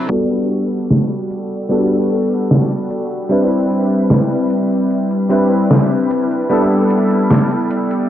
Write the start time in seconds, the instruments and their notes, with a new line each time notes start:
0.09 electric grand piano G3 B3 D4 F#4 A4, ambient pad G3 B3 A4 F#5, closed hi-hat
0.31 closed hi-hat
0.50 closed hi-hat
0.71 closed hi-hat
0.91 snare, closed hi-hat
1.11 closed hi-hat
1.31 closed hi-hat
1.51 closed hi-hat
1.69 electric grand piano G3 B3 D4 F#4 A4, closed hi-hat
1.91 closed hi-hat
2.11 closed hi-hat
2.31 closed hi-hat
2.51 snare, closed hi-hat
2.71 closed hi-hat
2.90 closed hi-hat
3.11 closed hi-hat
3.29 electric grand piano G3 C4 D4 E4 B4, ambient pad C4 B4 E5, closed hi-hat
3.51 closed hi-hat
3.70 closed hi-hat
3.90 closed hi-hat
4.10 snare, closed hi-hat
4.31 closed hi-hat
4.50 closed hi-hat
4.71 closed hi-hat
4.91 closed hi-hat
5.11 closed hi-hat
5.29 electric grand piano G3 C4 D4 E4 B4, closed hi-hat
5.51 closed hi-hat
5.71 snare, closed hi-hat
5.92 closed hi-hat
6.11 closed hi-hat
6.31 closed hi-hat
6.49 electric grand piano G3 B3 D4 E4 A4, ambient pad B3 A4 D5, closed hi-hat
6.71 closed hi-hat
6.90 closed hi-hat
7.11 closed hi-hat
7.31 snare, closed hi-hat
7.51 closed hi-hat
7.71 closed hi-hat
7.91 closed hi-hat